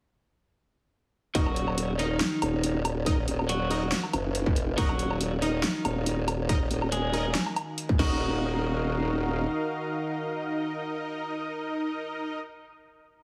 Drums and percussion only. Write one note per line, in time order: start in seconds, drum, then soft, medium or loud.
1.35 kick loud
1.35 closed hi-hat medium
1.46 low woodblock medium
1.56 closed hi-hat medium
1.68 low woodblock soft
1.78 closed hi-hat medium
1.99 closed hi-hat medium
2.21 snare loud
2.21 clap medium
2.21 closed hi-hat medium
2.42 closed hi-hat medium
2.42 low woodblock medium
2.64 closed hi-hat medium
2.85 closed hi-hat medium
2.85 low woodblock medium
3.06 kick loud
3.06 closed hi-hat medium
3.28 closed hi-hat medium
3.39 low woodblock soft
3.49 closed hi-hat medium
3.71 closed hi-hat medium
3.92 snare loud
3.92 clap medium
3.92 closed hi-hat medium
4.03 low woodblock medium
4.13 closed hi-hat medium
4.13 low woodblock medium
4.35 closed hi-hat medium
4.46 kick loud
4.56 closed hi-hat medium
4.78 kick loud
4.78 closed hi-hat medium
4.89 low woodblock medium
4.99 closed hi-hat medium
5.11 low woodblock soft
5.21 closed hi-hat medium
5.42 closed hi-hat soft
5.64 snare loud
5.64 clap medium
5.64 closed hi-hat medium
5.85 closed hi-hat soft
5.85 low woodblock medium
6.06 closed hi-hat medium
6.28 closed hi-hat medium
6.28 low woodblock medium
6.49 kick loud
6.49 closed hi-hat medium
6.71 closed hi-hat medium
6.82 low woodblock medium
6.92 closed hi-hat medium
7.14 closed hi-hat soft
7.35 snare loud
7.35 clap medium
7.35 closed hi-hat medium
7.46 low woodblock medium
7.56 closed hi-hat soft
7.56 low woodblock medium
7.78 closed hi-hat medium
7.89 kick loud
7.99 kick loud
7.99 crash medium